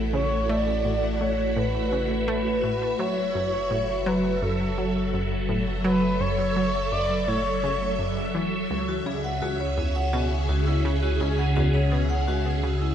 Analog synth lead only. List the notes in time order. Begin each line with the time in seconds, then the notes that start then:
0.13 C#5
0.49 D5
1.21 C#5
1.57 B4
2.28 B4
3.00 C#5
4.07 B4
4.42 A4
5.84 B4
6.20 C#5
6.92 D5
7.27 C#5